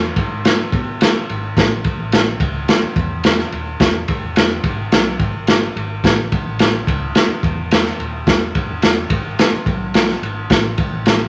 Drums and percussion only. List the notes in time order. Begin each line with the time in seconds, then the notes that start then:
0.16 kick, ride
0.45 snare, ride
0.72 kick, ride
1.01 snare, ride
1.29 ride
1.57 kick, snare, ride
1.84 kick, ride
2.12 snare, ride
2.40 kick, ride
2.68 snare, ride
2.96 kick, ride
3.24 snare, ride
3.39 snare
3.52 ride
3.80 kick, snare, ride
4.08 kick, ride
4.36 snare, ride
4.64 kick, ride
4.92 snare, ride
5.20 kick, ride
5.47 snare, ride
5.77 ride
6.04 kick, snare, ride
6.32 kick, ride
6.59 snare, ride
6.87 kick, ride
7.15 snare, ride
7.43 kick, ride
7.71 snare, ride
7.86 snare
8.00 ride
8.27 kick, snare, ride
8.55 kick, ride
8.82 snare, ride
9.10 kick, ride
9.39 snare, ride
9.66 kick, ride
9.94 snare, ride
10.09 snare
10.23 ride
10.50 kick, snare, ride
10.78 kick, ride
11.06 snare, ride